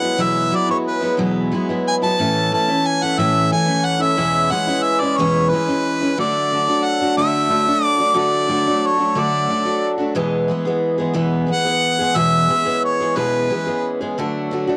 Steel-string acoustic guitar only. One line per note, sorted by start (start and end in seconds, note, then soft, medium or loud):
0.02 0.17 F#3 soft
0.02 0.18 G#3 soft
0.02 0.18 B3 soft
0.02 0.18 E4 medium
0.18 0.52 E2 medium
0.18 0.52 B2 medium
0.18 0.51 F#3 medium
0.18 0.51 G#3 medium
0.18 0.51 B3 medium
0.18 0.52 E4 medium
0.52 0.69 F#3 medium
0.52 0.69 G#3 medium
0.52 0.68 B3 medium
0.52 0.68 E4 medium
0.69 1.02 F#3 soft
0.69 1.01 G#3 soft
0.69 1.01 B3 soft
0.69 1.00 E4 medium
1.01 1.18 F#3 soft
1.01 1.18 G#3 soft
1.01 1.18 B3 medium
1.01 1.18 E4 medium
1.17 1.51 E2 medium
1.17 1.52 B2 medium
1.17 1.50 F#3 medium
1.17 1.51 G#3 medium
1.17 1.52 B3 medium
1.17 1.52 E4 medium
1.51 1.68 F#3 medium
1.51 1.69 G#3 medium
1.51 1.68 B3 medium
1.51 1.68 E4 medium
1.69 2.02 F#3 soft
1.69 2.01 G#3 soft
1.69 2.01 B3 soft
1.69 2.00 E4 medium
2.02 2.19 F#3 soft
2.02 2.19 G#3 soft
2.02 2.19 B3 medium
2.02 2.18 E4 medium
2.19 2.52 A2 medium
2.19 2.50 E3 medium
2.19 2.51 A3 medium
2.19 2.52 C#4 medium
2.19 2.52 E4 medium
2.52 2.68 E3 medium
2.52 2.69 A3 medium
2.52 2.68 C#4 medium
2.52 2.67 E4 medium
2.68 3.03 A3 soft
2.68 3.02 C#4 medium
2.68 3.01 E4 medium
3.02 3.18 A3 soft
3.02 3.18 C#4 soft
3.02 3.18 E4 soft
3.18 3.51 A2 medium
3.18 3.50 E3 medium
3.18 3.51 A3 medium
3.18 3.51 C#4 medium
3.18 3.52 E4 medium
3.52 3.68 E3 medium
3.52 3.67 A3 medium
3.52 3.66 C#4 medium
3.52 3.65 E4 medium
3.66 4.01 A3 soft
3.66 4.00 C#4 medium
3.66 3.98 E4 medium
4.00 4.17 A3 soft
4.00 4.17 C#4 soft
4.00 4.17 E4 medium
4.17 4.51 E2 medium
4.17 4.51 B2 medium
4.17 4.49 E3 medium
4.17 4.50 G#3 medium
4.17 4.51 C#4 medium
4.17 4.51 E4 medium
4.50 4.68 E3 medium
4.50 4.68 G#3 medium
4.50 4.67 C#4 medium
4.50 4.66 E4 medium
4.67 5.02 E3 soft
4.67 5.02 G#3 medium
4.67 5.01 C#4 medium
4.67 5.01 E4 medium
5.02 5.19 E3 soft
5.02 5.18 G#3 soft
5.02 5.19 C#4 soft
5.02 5.18 E4 medium
5.19 5.52 E2 medium
5.19 5.52 B2 medium
5.19 5.52 E3 medium
5.19 5.52 G#3 medium
5.19 5.52 C#4 medium
5.19 5.53 E4 medium
5.53 5.68 E3 medium
5.53 5.68 G#3 medium
5.53 5.67 C#4 medium
5.53 5.66 E4 medium
5.67 6.02 E3 soft
5.67 6.01 G#3 soft
5.67 6.01 C#4 medium
5.67 6.00 E4 medium
6.01 6.17 E3 soft
6.01 6.18 G#3 soft
6.01 6.17 C#4 medium
6.01 6.18 E4 medium
6.18 6.51 D3 medium
6.18 6.51 A3 medium
6.18 6.51 D4 medium
6.18 6.51 F#4 medium
6.52 6.68 D3 medium
6.52 6.69 A3 medium
6.52 6.68 D4 medium
6.52 6.67 F#4 medium
6.68 7.01 A3 soft
6.68 7.00 D4 soft
6.68 7.00 F#4 medium
7.01 7.16 A3 soft
7.01 7.17 D4 soft
7.01 7.18 F#4 soft
7.17 7.48 D3 medium
7.17 7.49 A3 medium
7.17 7.50 D4 medium
7.17 7.50 F#4 medium
7.49 7.67 D3 medium
7.49 7.67 A3 medium
7.49 7.67 D4 medium
7.49 7.66 F#4 medium
7.67 7.99 A3 soft
7.67 7.99 D4 soft
7.67 7.97 F#4 medium
7.98 8.13 A3 soft
7.98 8.13 D4 soft
7.98 8.14 F#4 medium
8.14 8.47 D3 medium
8.14 8.48 A3 medium
8.14 8.49 D4 medium
8.14 8.49 F#4 medium
8.48 8.66 D3 medium
8.48 8.67 A3 medium
8.48 8.66 D4 medium
8.48 8.65 F#4 medium
8.66 8.99 A3 soft
8.66 8.98 D4 soft
8.66 8.97 F#4 medium
8.98 9.14 A3 soft
8.98 9.15 D4 medium
8.98 9.15 F#4 medium
9.15 9.47 D3 medium
9.15 9.49 A3 medium
9.15 9.49 D4 medium
9.15 9.50 F#4 medium
9.49 9.66 D3 medium
9.49 9.66 A3 medium
9.49 9.65 D4 medium
9.49 9.64 F#4 medium
9.65 9.99 A3 soft
9.65 9.98 D4 soft
9.65 9.97 F#4 medium
9.98 10.15 A3 soft
9.98 10.15 D4 medium
9.98 10.16 F#4 medium
10.15 10.50 E2 medium
10.15 10.50 B2 medium
10.15 10.47 E3 medium
10.15 10.48 G#3 medium
10.15 10.50 B3 loud
10.15 10.50 G#4 loud
10.48 10.66 E3 medium
10.48 10.66 G#3 medium
10.48 10.66 B3 medium
10.48 10.64 G#4 medium
10.65 11.00 E3 medium
10.65 10.99 G#3 medium
10.65 10.98 B3 medium
10.65 10.97 G#4 medium
10.98 11.13 E3 soft
10.98 11.13 G#3 soft
10.98 11.13 B3 medium
10.98 11.14 G#4 medium
11.13 11.49 E2 medium
11.13 11.49 B2 medium
11.13 11.45 E3 medium
11.13 11.47 G#3 medium
11.13 11.47 B3 medium
11.13 11.47 G#4 loud
11.46 11.65 E3 medium
11.46 11.65 G#3 medium
11.46 11.64 B3 medium
11.46 11.64 G#4 medium
11.65 12.00 E3 soft
11.65 12.00 G#3 soft
11.65 11.99 B3 soft
11.65 11.98 G#4 soft
11.99 12.14 E3 soft
11.99 12.15 G#3 soft
11.99 12.15 B3 soft
11.99 12.15 G#4 medium
12.14 12.49 E2 medium
12.14 12.50 B2 medium
12.14 12.47 E3 medium
12.14 12.48 G#3 medium
12.14 12.49 B3 medium
12.14 12.49 G#4 medium
12.48 12.65 E3 soft
12.48 12.65 G#3 medium
12.48 12.65 B3 medium
12.48 12.64 G#4 medium
12.65 13.00 E3 soft
12.65 13.00 G#3 soft
12.65 13.00 B3 medium
12.65 12.99 G#4 medium
13.00 13.15 E3 soft
13.00 13.15 G#3 soft
13.00 13.16 B3 soft
13.00 13.16 G#4 medium
13.16 13.50 E2 medium
13.16 13.50 B2 medium
13.16 13.49 E3 medium
13.16 13.49 G#3 medium
13.16 13.50 B3 medium
13.16 13.51 G#4 medium
13.50 13.67 E3 medium
13.50 13.67 G#3 medium
13.50 13.67 B3 medium
13.50 13.65 G#4 medium
13.67 14.01 E3 soft
13.67 14.01 G#3 soft
13.67 14.00 B3 soft
13.67 13.99 G#4 soft
14.01 14.17 E3 soft
14.01 14.18 G#3 soft
14.01 14.18 B3 medium
14.01 14.17 G#4 medium
14.18 14.50 D3 medium
14.18 14.51 A3 medium
14.18 14.52 D4 medium
14.18 14.52 F#4 medium
14.51 14.68 D3 medium
14.51 14.68 A3 medium
14.51 14.68 D4 medium
14.51 14.66 F#4 medium
14.67 14.77 A3 soft
14.67 14.77 D4 medium
14.67 14.77 F#4 medium